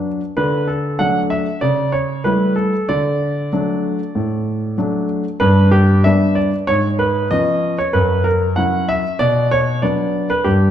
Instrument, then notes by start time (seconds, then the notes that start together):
grand piano
Already playing: F#3 D4
0.37 D3 B4
0.68 A4
0.99 F#3 A3 D4 F#5
1.30 E5
1.61 C#3 D5
1.92 C#5
2.24 G3 A3 E4 B4
2.56 A4
2.89 D3 D5
3.53 F#3 A3 D4
4.15 A2
4.78 F#3 A3 D4
5.40 G2 B4
5.71 G4
6.04 G3 B3 D4 E5
6.35 D5
6.67 G#2 C#5
6.99 B4
7.31 F3 B3 C#4 D#5
7.78 C#5
7.93 F#2 B4
8.24 A#4
8.56 F#3 C#4 E4 F#5
8.89 E5
9.19 B2 D5
9.51 C#5
9.82 F#3 B3 D4 D5
10.30 B4
10.44 G2 G4